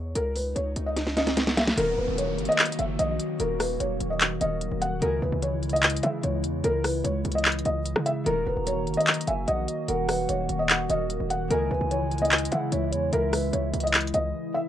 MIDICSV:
0, 0, Header, 1, 9, 480
1, 0, Start_track
1, 0, Tempo, 405405
1, 182, Time_signature, 4, 2, 24, 8
1, 17386, End_track
2, 0, Start_track
2, 0, Title_t, "Soft synth lead"
2, 0, Program_c, 0, 80
2, 9782, Note_on_c, 0, 82, 106
2, 10935, Note_off_c, 0, 82, 0
2, 10986, Note_on_c, 0, 80, 81
2, 11212, Note_off_c, 0, 80, 0
2, 11221, Note_on_c, 0, 78, 87
2, 11450, Note_off_c, 0, 78, 0
2, 11463, Note_on_c, 0, 75, 91
2, 11691, Note_off_c, 0, 75, 0
2, 11703, Note_on_c, 0, 78, 114
2, 12615, Note_off_c, 0, 78, 0
2, 12665, Note_on_c, 0, 78, 91
2, 12892, Note_off_c, 0, 78, 0
2, 12897, Note_on_c, 0, 75, 85
2, 13128, Note_off_c, 0, 75, 0
2, 13627, Note_on_c, 0, 80, 110
2, 14777, Note_off_c, 0, 80, 0
2, 14815, Note_on_c, 0, 78, 82
2, 15047, Note_off_c, 0, 78, 0
2, 15064, Note_on_c, 0, 76, 83
2, 15291, Note_off_c, 0, 76, 0
2, 15297, Note_on_c, 0, 73, 87
2, 15528, Note_off_c, 0, 73, 0
2, 15540, Note_on_c, 0, 76, 120
2, 16454, Note_off_c, 0, 76, 0
2, 17386, End_track
3, 0, Start_track
3, 0, Title_t, "Felt piano"
3, 0, Program_c, 1, 0
3, 0, Note_on_c, 1, 73, 79
3, 153, Note_off_c, 1, 73, 0
3, 187, Note_on_c, 1, 70, 101
3, 396, Note_off_c, 1, 70, 0
3, 427, Note_on_c, 1, 71, 80
3, 636, Note_off_c, 1, 71, 0
3, 658, Note_on_c, 1, 73, 89
3, 998, Note_off_c, 1, 73, 0
3, 1023, Note_on_c, 1, 75, 73
3, 1361, Note_off_c, 1, 75, 0
3, 1386, Note_on_c, 1, 75, 82
3, 1835, Note_off_c, 1, 75, 0
3, 1862, Note_on_c, 1, 76, 85
3, 2073, Note_off_c, 1, 76, 0
3, 2103, Note_on_c, 1, 70, 113
3, 2314, Note_off_c, 1, 70, 0
3, 2346, Note_on_c, 1, 71, 85
3, 2555, Note_off_c, 1, 71, 0
3, 2585, Note_on_c, 1, 73, 93
3, 2922, Note_off_c, 1, 73, 0
3, 2945, Note_on_c, 1, 75, 97
3, 3282, Note_off_c, 1, 75, 0
3, 3303, Note_on_c, 1, 76, 82
3, 3513, Note_off_c, 1, 76, 0
3, 3541, Note_on_c, 1, 75, 86
3, 3993, Note_off_c, 1, 75, 0
3, 4026, Note_on_c, 1, 70, 94
3, 4235, Note_off_c, 1, 70, 0
3, 4262, Note_on_c, 1, 71, 84
3, 4473, Note_off_c, 1, 71, 0
3, 4502, Note_on_c, 1, 73, 87
3, 4841, Note_off_c, 1, 73, 0
3, 4857, Note_on_c, 1, 75, 70
3, 5198, Note_off_c, 1, 75, 0
3, 5224, Note_on_c, 1, 75, 79
3, 5674, Note_off_c, 1, 75, 0
3, 5701, Note_on_c, 1, 78, 93
3, 5912, Note_off_c, 1, 78, 0
3, 5941, Note_on_c, 1, 70, 107
3, 6153, Note_off_c, 1, 70, 0
3, 6184, Note_on_c, 1, 71, 79
3, 6394, Note_off_c, 1, 71, 0
3, 6424, Note_on_c, 1, 73, 87
3, 6761, Note_off_c, 1, 73, 0
3, 6785, Note_on_c, 1, 75, 90
3, 7122, Note_off_c, 1, 75, 0
3, 7144, Note_on_c, 1, 76, 80
3, 7354, Note_off_c, 1, 76, 0
3, 7382, Note_on_c, 1, 73, 83
3, 7833, Note_off_c, 1, 73, 0
3, 7866, Note_on_c, 1, 70, 106
3, 8075, Note_off_c, 1, 70, 0
3, 8106, Note_on_c, 1, 71, 78
3, 8315, Note_off_c, 1, 71, 0
3, 8337, Note_on_c, 1, 73, 89
3, 8678, Note_off_c, 1, 73, 0
3, 8704, Note_on_c, 1, 75, 76
3, 9042, Note_off_c, 1, 75, 0
3, 9066, Note_on_c, 1, 75, 86
3, 9516, Note_off_c, 1, 75, 0
3, 9541, Note_on_c, 1, 76, 88
3, 9753, Note_off_c, 1, 76, 0
3, 9783, Note_on_c, 1, 70, 112
3, 9994, Note_off_c, 1, 70, 0
3, 10025, Note_on_c, 1, 71, 83
3, 10234, Note_off_c, 1, 71, 0
3, 10264, Note_on_c, 1, 73, 89
3, 10602, Note_off_c, 1, 73, 0
3, 10624, Note_on_c, 1, 75, 98
3, 10961, Note_off_c, 1, 75, 0
3, 10983, Note_on_c, 1, 76, 85
3, 11193, Note_off_c, 1, 76, 0
3, 11221, Note_on_c, 1, 75, 89
3, 11673, Note_off_c, 1, 75, 0
3, 11707, Note_on_c, 1, 70, 95
3, 11916, Note_off_c, 1, 70, 0
3, 11942, Note_on_c, 1, 71, 83
3, 12153, Note_off_c, 1, 71, 0
3, 12182, Note_on_c, 1, 73, 87
3, 12521, Note_off_c, 1, 73, 0
3, 12540, Note_on_c, 1, 75, 72
3, 12879, Note_off_c, 1, 75, 0
3, 12905, Note_on_c, 1, 75, 81
3, 13355, Note_off_c, 1, 75, 0
3, 13382, Note_on_c, 1, 78, 92
3, 13593, Note_off_c, 1, 78, 0
3, 13621, Note_on_c, 1, 70, 109
3, 13833, Note_off_c, 1, 70, 0
3, 13865, Note_on_c, 1, 71, 77
3, 14074, Note_off_c, 1, 71, 0
3, 14104, Note_on_c, 1, 73, 89
3, 14442, Note_off_c, 1, 73, 0
3, 14465, Note_on_c, 1, 75, 89
3, 14802, Note_off_c, 1, 75, 0
3, 14824, Note_on_c, 1, 76, 81
3, 15034, Note_off_c, 1, 76, 0
3, 15062, Note_on_c, 1, 73, 83
3, 15514, Note_off_c, 1, 73, 0
3, 15548, Note_on_c, 1, 70, 105
3, 15756, Note_off_c, 1, 70, 0
3, 15787, Note_on_c, 1, 71, 81
3, 15996, Note_off_c, 1, 71, 0
3, 16017, Note_on_c, 1, 73, 88
3, 16358, Note_off_c, 1, 73, 0
3, 16382, Note_on_c, 1, 75, 77
3, 16721, Note_off_c, 1, 75, 0
3, 16744, Note_on_c, 1, 75, 85
3, 17195, Note_off_c, 1, 75, 0
3, 17220, Note_on_c, 1, 76, 94
3, 17386, Note_off_c, 1, 76, 0
3, 17386, End_track
4, 0, Start_track
4, 0, Title_t, "Harp"
4, 0, Program_c, 2, 46
4, 2074, Note_on_c, 2, 51, 71
4, 2095, Note_on_c, 2, 58, 61
4, 2116, Note_on_c, 2, 66, 65
4, 2136, Note_on_c, 2, 70, 76
4, 5182, Note_off_c, 2, 66, 0
4, 5192, Note_off_c, 2, 70, 0
4, 5194, Note_off_c, 2, 51, 0
4, 5208, Note_on_c, 2, 51, 51
4, 5214, Note_off_c, 2, 58, 0
4, 5219, Note_on_c, 2, 58, 46
4, 5229, Note_on_c, 2, 66, 45
4, 5239, Note_on_c, 2, 70, 57
4, 5911, Note_on_c, 2, 49, 71
4, 5932, Note_on_c, 2, 56, 64
4, 5952, Note_on_c, 2, 64, 64
4, 5973, Note_on_c, 2, 68, 79
4, 6002, Note_off_c, 2, 51, 0
4, 7751, Note_off_c, 2, 70, 0
4, 8114, Note_off_c, 2, 66, 0
4, 9026, Note_off_c, 2, 58, 0
4, 9740, Note_off_c, 2, 64, 0
4, 9750, Note_off_c, 2, 68, 0
4, 9754, Note_on_c, 2, 51, 75
4, 9775, Note_on_c, 2, 58, 63
4, 9795, Note_on_c, 2, 66, 66
4, 9816, Note_on_c, 2, 70, 78
4, 9842, Note_off_c, 2, 49, 0
4, 9842, Note_off_c, 2, 56, 0
4, 12861, Note_off_c, 2, 66, 0
4, 12872, Note_off_c, 2, 70, 0
4, 12875, Note_off_c, 2, 51, 0
4, 12889, Note_on_c, 2, 51, 51
4, 12895, Note_off_c, 2, 58, 0
4, 12899, Note_on_c, 2, 58, 47
4, 12910, Note_on_c, 2, 66, 44
4, 12920, Note_on_c, 2, 70, 58
4, 13591, Note_on_c, 2, 49, 72
4, 13612, Note_on_c, 2, 56, 66
4, 13632, Note_on_c, 2, 64, 63
4, 13653, Note_on_c, 2, 68, 79
4, 13682, Note_off_c, 2, 51, 0
4, 15432, Note_off_c, 2, 70, 0
4, 15795, Note_off_c, 2, 66, 0
4, 16706, Note_off_c, 2, 58, 0
4, 17386, Note_off_c, 2, 49, 0
4, 17386, Note_off_c, 2, 56, 0
4, 17386, Note_off_c, 2, 64, 0
4, 17386, Note_off_c, 2, 68, 0
4, 17386, End_track
5, 0, Start_track
5, 0, Title_t, "Ambient pad"
5, 0, Program_c, 3, 92
5, 2104, Note_on_c, 3, 51, 78
5, 2104, Note_on_c, 3, 54, 70
5, 2104, Note_on_c, 3, 58, 73
5, 2104, Note_on_c, 3, 66, 86
5, 5905, Note_off_c, 3, 51, 0
5, 5905, Note_off_c, 3, 54, 0
5, 5905, Note_off_c, 3, 58, 0
5, 5905, Note_off_c, 3, 66, 0
5, 5943, Note_on_c, 3, 49, 78
5, 5943, Note_on_c, 3, 52, 70
5, 5943, Note_on_c, 3, 56, 74
5, 5943, Note_on_c, 3, 64, 89
5, 9744, Note_off_c, 3, 49, 0
5, 9744, Note_off_c, 3, 52, 0
5, 9744, Note_off_c, 3, 56, 0
5, 9745, Note_off_c, 3, 64, 0
5, 9782, Note_on_c, 3, 51, 80
5, 9783, Note_on_c, 3, 54, 74
5, 9783, Note_on_c, 3, 58, 74
5, 9783, Note_on_c, 3, 66, 86
5, 13584, Note_off_c, 3, 51, 0
5, 13584, Note_off_c, 3, 54, 0
5, 13584, Note_off_c, 3, 58, 0
5, 13584, Note_off_c, 3, 66, 0
5, 13623, Note_on_c, 3, 56, 72
5, 13623, Note_on_c, 3, 64, 84
5, 13624, Note_on_c, 3, 49, 78
5, 13624, Note_on_c, 3, 52, 74
5, 17386, Note_off_c, 3, 49, 0
5, 17386, Note_off_c, 3, 52, 0
5, 17386, Note_off_c, 3, 56, 0
5, 17386, Note_off_c, 3, 64, 0
5, 17386, End_track
6, 0, Start_track
6, 0, Title_t, "808-style bass"
6, 0, Program_c, 4, 38
6, 0, Note_on_c, 4, 40, 97
6, 170, Note_off_c, 4, 40, 0
6, 183, Note_on_c, 4, 37, 115
6, 643, Note_off_c, 4, 37, 0
6, 663, Note_on_c, 4, 37, 104
6, 893, Note_off_c, 4, 37, 0
6, 903, Note_on_c, 4, 37, 101
6, 2055, Note_off_c, 4, 37, 0
6, 2102, Note_on_c, 4, 27, 117
6, 2333, Note_off_c, 4, 27, 0
6, 2343, Note_on_c, 4, 27, 102
6, 2458, Note_off_c, 4, 27, 0
6, 2463, Note_on_c, 4, 27, 106
6, 2823, Note_on_c, 4, 30, 103
6, 2841, Note_off_c, 4, 27, 0
6, 2937, Note_off_c, 4, 30, 0
6, 3302, Note_on_c, 4, 30, 107
6, 3533, Note_off_c, 4, 30, 0
6, 3542, Note_on_c, 4, 34, 108
6, 3773, Note_off_c, 4, 34, 0
6, 4023, Note_on_c, 4, 27, 111
6, 4483, Note_off_c, 4, 27, 0
6, 4503, Note_on_c, 4, 27, 104
6, 4733, Note_off_c, 4, 27, 0
6, 4742, Note_on_c, 4, 27, 104
6, 5203, Note_off_c, 4, 27, 0
6, 5223, Note_on_c, 4, 27, 106
6, 5568, Note_off_c, 4, 27, 0
6, 5583, Note_on_c, 4, 27, 106
6, 5928, Note_off_c, 4, 27, 0
6, 5943, Note_on_c, 4, 37, 115
6, 6173, Note_off_c, 4, 37, 0
6, 6182, Note_on_c, 4, 37, 106
6, 6298, Note_off_c, 4, 37, 0
6, 6303, Note_on_c, 4, 37, 106
6, 7109, Note_off_c, 4, 37, 0
6, 7143, Note_on_c, 4, 49, 110
6, 7373, Note_off_c, 4, 49, 0
6, 7383, Note_on_c, 4, 37, 111
6, 7623, Note_on_c, 4, 40, 96
6, 7640, Note_off_c, 4, 37, 0
6, 7851, Note_off_c, 4, 40, 0
6, 7863, Note_on_c, 4, 37, 112
6, 8324, Note_off_c, 4, 37, 0
6, 8343, Note_on_c, 4, 37, 107
6, 8573, Note_off_c, 4, 37, 0
6, 8583, Note_on_c, 4, 37, 104
6, 9044, Note_off_c, 4, 37, 0
6, 9063, Note_on_c, 4, 37, 109
6, 9408, Note_off_c, 4, 37, 0
6, 9423, Note_on_c, 4, 49, 104
6, 9768, Note_off_c, 4, 49, 0
6, 9782, Note_on_c, 4, 27, 115
6, 10013, Note_off_c, 4, 27, 0
6, 10023, Note_on_c, 4, 27, 104
6, 10138, Note_off_c, 4, 27, 0
6, 10143, Note_on_c, 4, 27, 107
6, 10503, Note_on_c, 4, 30, 97
6, 10521, Note_off_c, 4, 27, 0
6, 10617, Note_off_c, 4, 30, 0
6, 10983, Note_on_c, 4, 30, 105
6, 11213, Note_off_c, 4, 30, 0
6, 11223, Note_on_c, 4, 34, 111
6, 11453, Note_off_c, 4, 34, 0
6, 11703, Note_on_c, 4, 27, 115
6, 12164, Note_off_c, 4, 27, 0
6, 12182, Note_on_c, 4, 27, 109
6, 12413, Note_off_c, 4, 27, 0
6, 12423, Note_on_c, 4, 27, 103
6, 12883, Note_off_c, 4, 27, 0
6, 12903, Note_on_c, 4, 27, 109
6, 13248, Note_off_c, 4, 27, 0
6, 13262, Note_on_c, 4, 27, 104
6, 13608, Note_off_c, 4, 27, 0
6, 13622, Note_on_c, 4, 37, 118
6, 13853, Note_off_c, 4, 37, 0
6, 13863, Note_on_c, 4, 37, 104
6, 13978, Note_off_c, 4, 37, 0
6, 13982, Note_on_c, 4, 37, 104
6, 14789, Note_off_c, 4, 37, 0
6, 14822, Note_on_c, 4, 49, 110
6, 15053, Note_off_c, 4, 49, 0
6, 15063, Note_on_c, 4, 37, 109
6, 15302, Note_on_c, 4, 40, 100
6, 15320, Note_off_c, 4, 37, 0
6, 15530, Note_off_c, 4, 40, 0
6, 15542, Note_on_c, 4, 37, 114
6, 16003, Note_off_c, 4, 37, 0
6, 16022, Note_on_c, 4, 37, 102
6, 16253, Note_off_c, 4, 37, 0
6, 16262, Note_on_c, 4, 37, 106
6, 16723, Note_off_c, 4, 37, 0
6, 16742, Note_on_c, 4, 37, 109
6, 16973, Note_off_c, 4, 37, 0
6, 17386, End_track
7, 0, Start_track
7, 0, Title_t, "Downlifter"
7, 0, Program_c, 5, 103
7, 2103, Note_on_c, 5, 60, 85
7, 5943, Note_off_c, 5, 60, 0
7, 17386, End_track
8, 0, Start_track
8, 0, Title_t, "Swell"
8, 0, Program_c, 6, 103
8, 183, Note_on_c, 6, 60, 88
8, 2103, Note_off_c, 6, 60, 0
8, 17386, End_track
9, 0, Start_track
9, 0, Title_t, "Drums"
9, 182, Note_on_c, 9, 42, 85
9, 301, Note_off_c, 9, 42, 0
9, 422, Note_on_c, 9, 46, 82
9, 540, Note_off_c, 9, 46, 0
9, 662, Note_on_c, 9, 42, 76
9, 781, Note_off_c, 9, 42, 0
9, 901, Note_on_c, 9, 42, 85
9, 1020, Note_off_c, 9, 42, 0
9, 1142, Note_on_c, 9, 38, 60
9, 1143, Note_on_c, 9, 42, 81
9, 1261, Note_off_c, 9, 38, 0
9, 1262, Note_off_c, 9, 42, 0
9, 1263, Note_on_c, 9, 38, 55
9, 1381, Note_off_c, 9, 38, 0
9, 1383, Note_on_c, 9, 38, 72
9, 1383, Note_on_c, 9, 42, 67
9, 1501, Note_off_c, 9, 38, 0
9, 1501, Note_off_c, 9, 42, 0
9, 1503, Note_on_c, 9, 38, 72
9, 1503, Note_on_c, 9, 42, 42
9, 1621, Note_off_c, 9, 38, 0
9, 1621, Note_off_c, 9, 42, 0
9, 1621, Note_on_c, 9, 42, 79
9, 1623, Note_on_c, 9, 38, 88
9, 1739, Note_off_c, 9, 42, 0
9, 1741, Note_off_c, 9, 38, 0
9, 1743, Note_on_c, 9, 38, 81
9, 1861, Note_off_c, 9, 38, 0
9, 1863, Note_on_c, 9, 38, 102
9, 1863, Note_on_c, 9, 42, 73
9, 1981, Note_off_c, 9, 38, 0
9, 1982, Note_off_c, 9, 42, 0
9, 1982, Note_on_c, 9, 38, 90
9, 2101, Note_off_c, 9, 38, 0
9, 2102, Note_on_c, 9, 42, 86
9, 2220, Note_off_c, 9, 42, 0
9, 2582, Note_on_c, 9, 42, 79
9, 2700, Note_off_c, 9, 42, 0
9, 2823, Note_on_c, 9, 42, 49
9, 2903, Note_off_c, 9, 42, 0
9, 2903, Note_on_c, 9, 42, 58
9, 2983, Note_off_c, 9, 42, 0
9, 2983, Note_on_c, 9, 42, 61
9, 3062, Note_on_c, 9, 39, 122
9, 3063, Note_off_c, 9, 42, 0
9, 3063, Note_on_c, 9, 42, 68
9, 3143, Note_off_c, 9, 42, 0
9, 3143, Note_on_c, 9, 42, 74
9, 3181, Note_off_c, 9, 39, 0
9, 3223, Note_off_c, 9, 42, 0
9, 3223, Note_on_c, 9, 42, 79
9, 3301, Note_off_c, 9, 42, 0
9, 3301, Note_on_c, 9, 42, 70
9, 3419, Note_off_c, 9, 42, 0
9, 3541, Note_on_c, 9, 42, 76
9, 3660, Note_off_c, 9, 42, 0
9, 3783, Note_on_c, 9, 42, 79
9, 3902, Note_off_c, 9, 42, 0
9, 4022, Note_on_c, 9, 42, 87
9, 4141, Note_off_c, 9, 42, 0
9, 4262, Note_on_c, 9, 46, 88
9, 4263, Note_on_c, 9, 37, 76
9, 4380, Note_off_c, 9, 46, 0
9, 4381, Note_off_c, 9, 37, 0
9, 4502, Note_on_c, 9, 42, 80
9, 4620, Note_off_c, 9, 42, 0
9, 4741, Note_on_c, 9, 42, 80
9, 4860, Note_off_c, 9, 42, 0
9, 4981, Note_on_c, 9, 39, 117
9, 4983, Note_on_c, 9, 42, 81
9, 5100, Note_off_c, 9, 39, 0
9, 5101, Note_off_c, 9, 42, 0
9, 5220, Note_on_c, 9, 42, 69
9, 5339, Note_off_c, 9, 42, 0
9, 5461, Note_on_c, 9, 42, 80
9, 5579, Note_off_c, 9, 42, 0
9, 5703, Note_on_c, 9, 42, 75
9, 5821, Note_off_c, 9, 42, 0
9, 5942, Note_on_c, 9, 42, 89
9, 6061, Note_off_c, 9, 42, 0
9, 6422, Note_on_c, 9, 42, 83
9, 6541, Note_off_c, 9, 42, 0
9, 6662, Note_on_c, 9, 42, 49
9, 6743, Note_off_c, 9, 42, 0
9, 6743, Note_on_c, 9, 42, 57
9, 6823, Note_off_c, 9, 42, 0
9, 6823, Note_on_c, 9, 42, 62
9, 6901, Note_on_c, 9, 39, 121
9, 6902, Note_off_c, 9, 42, 0
9, 6902, Note_on_c, 9, 42, 67
9, 6982, Note_off_c, 9, 42, 0
9, 6982, Note_on_c, 9, 42, 76
9, 7020, Note_off_c, 9, 39, 0
9, 7062, Note_off_c, 9, 42, 0
9, 7062, Note_on_c, 9, 42, 82
9, 7140, Note_off_c, 9, 42, 0
9, 7140, Note_on_c, 9, 42, 70
9, 7258, Note_off_c, 9, 42, 0
9, 7381, Note_on_c, 9, 42, 76
9, 7499, Note_off_c, 9, 42, 0
9, 7623, Note_on_c, 9, 42, 81
9, 7741, Note_off_c, 9, 42, 0
9, 7862, Note_on_c, 9, 42, 84
9, 7981, Note_off_c, 9, 42, 0
9, 8102, Note_on_c, 9, 37, 75
9, 8102, Note_on_c, 9, 46, 87
9, 8220, Note_off_c, 9, 46, 0
9, 8221, Note_off_c, 9, 37, 0
9, 8342, Note_on_c, 9, 42, 82
9, 8460, Note_off_c, 9, 42, 0
9, 8582, Note_on_c, 9, 42, 69
9, 8663, Note_off_c, 9, 42, 0
9, 8663, Note_on_c, 9, 42, 70
9, 8743, Note_off_c, 9, 42, 0
9, 8743, Note_on_c, 9, 42, 66
9, 8822, Note_on_c, 9, 39, 122
9, 8823, Note_off_c, 9, 42, 0
9, 8823, Note_on_c, 9, 42, 66
9, 8903, Note_off_c, 9, 42, 0
9, 8903, Note_on_c, 9, 42, 67
9, 8940, Note_off_c, 9, 39, 0
9, 8983, Note_off_c, 9, 42, 0
9, 8983, Note_on_c, 9, 42, 68
9, 9060, Note_off_c, 9, 42, 0
9, 9060, Note_on_c, 9, 42, 68
9, 9179, Note_off_c, 9, 42, 0
9, 9301, Note_on_c, 9, 42, 80
9, 9419, Note_off_c, 9, 42, 0
9, 9423, Note_on_c, 9, 37, 95
9, 9541, Note_off_c, 9, 37, 0
9, 9543, Note_on_c, 9, 42, 73
9, 9661, Note_off_c, 9, 42, 0
9, 9782, Note_on_c, 9, 42, 86
9, 9900, Note_off_c, 9, 42, 0
9, 10262, Note_on_c, 9, 42, 82
9, 10380, Note_off_c, 9, 42, 0
9, 10502, Note_on_c, 9, 42, 50
9, 10582, Note_off_c, 9, 42, 0
9, 10582, Note_on_c, 9, 42, 58
9, 10662, Note_off_c, 9, 42, 0
9, 10662, Note_on_c, 9, 42, 60
9, 10741, Note_on_c, 9, 39, 122
9, 10742, Note_off_c, 9, 42, 0
9, 10742, Note_on_c, 9, 42, 69
9, 10822, Note_off_c, 9, 42, 0
9, 10822, Note_on_c, 9, 42, 75
9, 10860, Note_off_c, 9, 39, 0
9, 10902, Note_off_c, 9, 42, 0
9, 10902, Note_on_c, 9, 42, 81
9, 10980, Note_off_c, 9, 42, 0
9, 10980, Note_on_c, 9, 42, 69
9, 11098, Note_off_c, 9, 42, 0
9, 11221, Note_on_c, 9, 42, 73
9, 11339, Note_off_c, 9, 42, 0
9, 11463, Note_on_c, 9, 42, 78
9, 11582, Note_off_c, 9, 42, 0
9, 11702, Note_on_c, 9, 42, 88
9, 11821, Note_off_c, 9, 42, 0
9, 11942, Note_on_c, 9, 46, 87
9, 11943, Note_on_c, 9, 37, 77
9, 12060, Note_off_c, 9, 46, 0
9, 12061, Note_off_c, 9, 37, 0
9, 12182, Note_on_c, 9, 42, 79
9, 12301, Note_off_c, 9, 42, 0
9, 12421, Note_on_c, 9, 42, 83
9, 12540, Note_off_c, 9, 42, 0
9, 12662, Note_on_c, 9, 39, 118
9, 12664, Note_on_c, 9, 42, 85
9, 12780, Note_off_c, 9, 39, 0
9, 12782, Note_off_c, 9, 42, 0
9, 12901, Note_on_c, 9, 42, 69
9, 13019, Note_off_c, 9, 42, 0
9, 13141, Note_on_c, 9, 42, 80
9, 13260, Note_off_c, 9, 42, 0
9, 13383, Note_on_c, 9, 42, 78
9, 13502, Note_off_c, 9, 42, 0
9, 13623, Note_on_c, 9, 42, 86
9, 13741, Note_off_c, 9, 42, 0
9, 14102, Note_on_c, 9, 42, 80
9, 14221, Note_off_c, 9, 42, 0
9, 14343, Note_on_c, 9, 42, 49
9, 14423, Note_off_c, 9, 42, 0
9, 14423, Note_on_c, 9, 42, 57
9, 14503, Note_off_c, 9, 42, 0
9, 14503, Note_on_c, 9, 42, 62
9, 14582, Note_off_c, 9, 42, 0
9, 14582, Note_on_c, 9, 39, 120
9, 14582, Note_on_c, 9, 42, 67
9, 14662, Note_off_c, 9, 42, 0
9, 14662, Note_on_c, 9, 42, 73
9, 14700, Note_off_c, 9, 39, 0
9, 14743, Note_off_c, 9, 42, 0
9, 14743, Note_on_c, 9, 42, 80
9, 14820, Note_off_c, 9, 42, 0
9, 14820, Note_on_c, 9, 42, 69
9, 14939, Note_off_c, 9, 42, 0
9, 15061, Note_on_c, 9, 42, 74
9, 15179, Note_off_c, 9, 42, 0
9, 15303, Note_on_c, 9, 42, 83
9, 15422, Note_off_c, 9, 42, 0
9, 15543, Note_on_c, 9, 42, 91
9, 15661, Note_off_c, 9, 42, 0
9, 15782, Note_on_c, 9, 46, 90
9, 15783, Note_on_c, 9, 37, 75
9, 15900, Note_off_c, 9, 46, 0
9, 15901, Note_off_c, 9, 37, 0
9, 16022, Note_on_c, 9, 42, 81
9, 16141, Note_off_c, 9, 42, 0
9, 16263, Note_on_c, 9, 42, 68
9, 16343, Note_off_c, 9, 42, 0
9, 16343, Note_on_c, 9, 42, 71
9, 16423, Note_off_c, 9, 42, 0
9, 16423, Note_on_c, 9, 42, 67
9, 16502, Note_on_c, 9, 39, 119
9, 16503, Note_off_c, 9, 42, 0
9, 16503, Note_on_c, 9, 42, 65
9, 16583, Note_off_c, 9, 42, 0
9, 16583, Note_on_c, 9, 42, 65
9, 16620, Note_off_c, 9, 39, 0
9, 16663, Note_off_c, 9, 42, 0
9, 16663, Note_on_c, 9, 42, 66
9, 16740, Note_off_c, 9, 42, 0
9, 16740, Note_on_c, 9, 42, 70
9, 16859, Note_off_c, 9, 42, 0
9, 17386, End_track
0, 0, End_of_file